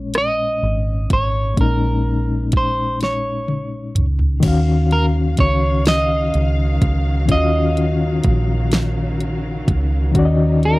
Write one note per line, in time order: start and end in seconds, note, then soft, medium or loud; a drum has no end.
0.00 0.59 A#1 medium
0.00 1.52 A#2 medium
0.00 1.53 G#3 medium
0.00 1.54 C#4 medium
0.00 1.55 C#5 medium
0.14 cross-stick loud
0.14 closed hi-hat medium
0.18 1.13 D#5 medium
0.63 1.06 G#1 medium
1.10 1.54 G#1 medium
1.10 1.60 C#5 medium
1.10 kick medium
1.10 closed hi-hat medium
1.54 4.37 A#2 medium
1.54 4.39 G#3 medium
1.54 kick loud
1.54 closed hi-hat medium
1.58 3.92 A#1 medium
1.58 4.40 C#4 medium
1.58 4.41 D#4 medium
1.58 2.57 A#4 medium
2.52 kick medium
2.52 closed hi-hat medium
2.57 2.99 C5 medium
3.01 4.05 C#5 medium
3.01 snare soft
3.01 closed hi-hat medium
3.48 high tom medium
3.95 4.40 C#2 medium
3.95 closed hi-hat medium
3.95 mid tom medium
4.19 floor tom medium
4.40 10.79 C#3 medium
4.40 7.23 D#3 medium
4.40 10.79 D#3 medium
4.40 7.24 C#4 medium
4.40 10.11 F5 medium
4.40 kick loud
4.40 closed hi-hat medium
4.40 crash medium
4.44 5.35 D#2 loud
4.44 10.79 F#3 medium
4.44 7.26 F#4 medium
4.44 7.27 F5 medium
4.91 5.05 A#4 medium
4.91 closed hi-hat medium
5.37 6.30 C#2 medium
5.37 5.88 C#5 loud
5.37 kick loud
5.37 closed hi-hat medium
5.86 7.30 D#5 medium
5.86 snare loud
5.86 closed hi-hat medium
6.34 6.78 C#2 medium
6.34 closed hi-hat soft
6.82 7.30 C#2 loud
6.82 kick loud
6.82 closed hi-hat medium
7.26 10.09 D#3 medium
7.26 10.10 C#4 medium
7.26 kick loud
7.26 closed hi-hat medium
7.30 8.21 D#2 loud
7.30 7.36 F4 soft
7.30 9.17 D#5 medium
7.30 10.12 F5 medium
7.37 10.14 F#4 medium
7.77 closed hi-hat medium
8.24 9.64 A#1 medium
8.24 kick loud
8.24 closed hi-hat medium
8.72 snare loud
8.72 closed hi-hat medium
9.20 closed hi-hat medium
9.68 10.11 C#2 loud
9.68 kick loud
9.68 closed hi-hat medium
10.12 10.79 D#3 medium
10.12 10.79 C#4 medium
10.12 10.79 D#4 medium
10.12 kick loud
10.12 closed hi-hat medium
10.16 10.79 D#2 loud
10.16 10.79 F#4 medium
10.16 10.23 D5 medium
10.25 10.79 D#5 medium
10.63 10.79 A#4 medium
10.63 closed hi-hat soft